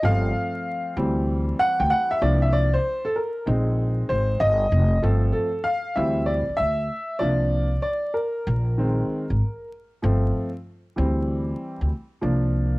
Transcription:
0.03 upright bass G1, grand piano F3 A3 C4 F5
0.97 upright bass D2, grand piano E3 G3 C4
1.59 grand piano F#5
1.80 upright bass D2, grand piano G5
1.90 grand piano F#5
2.11 grand piano E5
2.21 upright bass C2, grand piano F3 A#3 D4 D5
2.42 grand piano E5
2.53 grand piano D5
2.74 grand piano C5
3.05 grand piano A4
3.16 grand piano A#4
3.46 upright bass A#1, grand piano G#3 C4 D#4
4.09 upright bass G#1, grand piano C5
4.40 upright bass G1, grand piano D#5
4.72 upright bass F1
5.02 upright bass G1, grand piano F3 A3 C4 A4
5.33 grand piano A4
5.64 grand piano F5
5.96 upright bass D2, grand piano E3 G3 C4 E5
6.26 grand piano D5
6.49 muted upright bass stroke
6.57 upright bass D2, grand piano E5
7.19 upright bass C2, grand piano F3 A#3 D4 D5
7.82 grand piano D5
8.14 grand piano A#4
8.47 upright bass A#1
8.78 grand piano D#3 G#3 C4
9.30 upright bass G#1
10.02 upright bass G1, grand piano F3 A3 C4
10.96 upright bass D2, grand piano E3 G3 C4
11.81 upright bass D2
12.21 upright bass C2, grand piano F3 A#3 D4

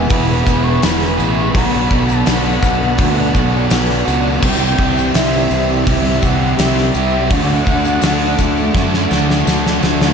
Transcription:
Already playing: distorted electric guitar B2 E3, overdriven electric guitar E3 G#3 B3 E4 G#4, string machine G#4 B4 E5 B5, flute G#5
0.10 fingered electric bass E1, overdriven electric guitar E2 B2 E3 G#3 B3, flute B5, kick, open hi-hat
0.14 overdriven electric guitar G#4
0.30 tambourine
0.46 fingered electric bass E1, overdriven electric guitar E3 G#3 B3 E4 G#4, kick, tambourine
0.64 flute C#6
0.82 fingered electric bass E1, distorted electric guitar E2 B2 E3, overdriven electric guitar E3 G#3 B3 E4, flute B5, snare, open hi-hat, tambourine
1.02 snare
1.18 fingered electric bass A1, overdriven electric guitar E3 G#3 B3 G#4, tambourine
1.38 flute C#6
1.53 fingered electric bass B1, overdriven electric guitar B2 F#3 B3 D4 F#4, string machine A4 D5 F#5, flute B5, kick, open hi-hat
1.57 overdriven electric guitar D4
1.91 fingered electric bass B1, kick
2.09 flute A5, tambourine
2.26 fingered electric bass B1, distorted electric guitar B2, overdriven electric guitar F#3 B3 D4 F#4, snare, open hi-hat, tambourine
2.30 flute F#5
2.63 fingered electric bass B1, distorted electric guitar F#3 B3, kick, tambourine
2.97 fingered electric bass D2, overdriven electric guitar B2 F#3 B3 D4 F#4, kick, open hi-hat
3.18 tambourine
3.33 fingered electric bass B1, overdriven electric guitar B2 F#3 B3 D4 F#4, kick, tambourine
3.70 fingered electric bass B1, distorted electric guitar B2 F#3 B3, overdriven electric guitar B2 F#3 B3 D4, snare, open hi-hat, tambourine
3.90 snare
4.05 fingered electric bass C#2, overdriven electric guitar B3 D4 F#4, tambourine
4.41 fingered electric bass C2, overdriven electric guitar C3 E3 G3 C4 E4 G4, string machine G4 E5 C6, flute G5, kick, crash
4.79 fingered electric bass C2, kick
4.98 tambourine
5.14 fingered electric bass C2, distorted electric guitar C3, overdriven electric guitar E3 G3 C4 G4, flute E5, snare, open hi-hat, tambourine
5.50 fingered electric bass C2, distorted electric guitar G3 C4, tambourine
5.85 fingered electric bass C2, overdriven electric guitar C3 E3 G3 C4 G4, flute E5, kick, open hi-hat
6.05 tambourine
6.21 fingered electric bass C2, overdriven electric guitar G3 C4 E4 G4, flute F#5, kick, tambourine
6.25 overdriven electric guitar C3 G3
6.57 fingered electric bass C2, overdriven electric guitar C3 G3 C4 E4, distorted electric guitar C3 G3 C4, flute E5, snare, open hi-hat, tambourine
6.78 snare
6.94 fingered electric bass C2, overdriven electric guitar G3 C4 G4, flute E5, tambourine
7.29 fingered electric bass D2, overdriven electric guitar D3 F#3 A3 D4 F#4, string machine A4 F#5 D6, flute F#5, kick, open hi-hat, tambourine
7.67 fingered electric bass D2, kick, tambourine
7.85 tambourine
8.00 fingered electric bass D2, overdriven electric guitar D3 A3 D4 F#4, snare, open hi-hat, tambourine
8.20 tambourine
8.37 fingered electric bass D2, distorted electric guitar A3 D4, kick, tambourine
8.57 tambourine
8.73 fingered electric bass F#2, overdriven electric guitar D3 A3 D4 F#4, kick, snare, tambourine
8.94 snare
9.08 fingered electric bass D2, overdriven electric guitar A3 D4 F#4, tambourine
9.12 overdriven electric guitar D3 F#3, snare
9.30 snare
9.45 fingered electric bass D2, distorted electric guitar D3 A3 D4, overdriven electric guitar D3 F#3 A3 D4, snare, tambourine
9.66 snare
9.79 fingered electric bass D2, overdriven electric guitar A3 D4 F#4, tambourine
9.84 snare
10.00 snare, tambourine

